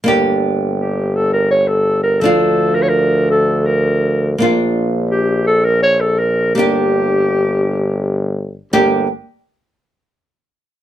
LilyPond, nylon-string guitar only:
\new Staff \with { instrumentName = "Nylon-string guitar" } { \time 3/4 \key g \minor \tempo 4 = 83 <bes d' g'>2. | <f d' f'>2. | <bes d' f'>2. | <bes d' g'>2. |
<bes d' g'>8 r2 r8 | }